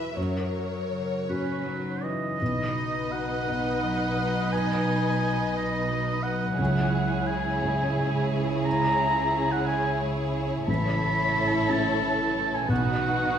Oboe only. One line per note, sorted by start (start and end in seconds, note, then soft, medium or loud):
1.29 2.04 B4 soft
2.03 3.13 D#5 medium
3.11 4.54 F#5 medium
4.52 5.56 G#5 medium
5.57 6.24 D#5 medium
6.23 7.28 F#5 medium
7.27 8.38 G#5 medium
8.65 9.53 A#5 medium
9.52 9.67 F#5 medium
9.67 10.00 G#5 medium
10.70 11.72 B5 medium
11.70 12.56 A5 medium
12.55 12.70 G#5 medium
12.70 13.39 F#5 medium